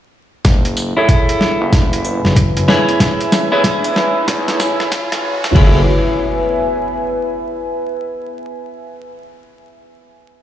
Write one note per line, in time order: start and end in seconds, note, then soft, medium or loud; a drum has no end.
0.44 0.94 F#1 medium
0.44 5.51 A3 medium
0.44 5.51 E4 medium
0.44 2.98 F#4 medium
0.44 5.55 B4 medium
0.44 5.51 C#5 medium
0.44 kick medium
0.44 cross-stick medium
0.44 snare soft
0.44 closed hi-hat medium
0.44 riser medium
0.65 closed hi-hat soft
0.77 5.55 E5 medium
0.77 tambourine medium
0.84 5.55 G#5 medium
0.97 2.66 E4 medium
0.97 2.66 G#4 medium
0.97 2.66 A4 medium
0.97 2.66 C#5 medium
1.09 kick medium
1.09 closed hi-hat medium
1.29 closed hi-hat soft
1.41 snare medium
1.61 2.21 F#1 loud
1.73 kick loud
1.73 snare medium
1.73 closed hi-hat medium
1.93 closed hi-hat medium
2.05 tambourine medium
2.25 2.53 F#1 medium
2.25 snare medium
2.36 kick medium
2.36 closed hi-hat medium
2.57 2.67 F#1 medium
2.57 closed hi-hat medium
2.68 3.48 E4 medium
2.68 3.48 G#4 medium
2.68 3.48 B4 medium
2.68 3.48 C#5 medium
2.68 snare medium
2.89 closed hi-hat soft
3.00 5.53 G#4 medium
3.00 kick loud
3.00 snare medium
3.00 closed hi-hat medium
3.21 closed hi-hat medium
3.32 snare medium
3.32 tambourine medium
3.52 5.54 E4 medium
3.52 5.54 G#4 medium
3.52 5.54 B4 medium
3.52 5.54 C#5 medium
3.64 kick loud
3.64 snare medium
3.64 closed hi-hat medium
3.84 closed hi-hat medium
3.96 snare medium
4.28 4.58 E2 loud
4.28 kick loud
4.28 snare medium
4.28 closed hi-hat medium
4.48 snare medium
4.48 closed hi-hat medium
4.60 5.09 A1 medium
4.60 snare medium
4.60 tambourine medium
4.80 snare medium
4.92 kick medium
4.92 snare loud
4.92 closed hi-hat medium
5.12 5.54 A1 loud
5.12 snare loud
5.12 closed hi-hat medium
5.44 snare loud
5.44 closed hi-hat soft
5.55 5.85 F#1 medium
5.55 5.85 A3 medium
5.55 5.85 E4 medium
5.55 5.81 E4 medium
5.55 5.85 F#4 medium
5.55 5.81 G#4 medium
5.55 5.81 A4 medium
5.55 8.07 B4 medium
5.55 5.85 C#5 medium
5.55 5.81 C#5 medium
5.55 kick loud
5.55 crash medium
5.55 impact medium
5.67 8.07 E5 medium
5.78 8.07 G#5 medium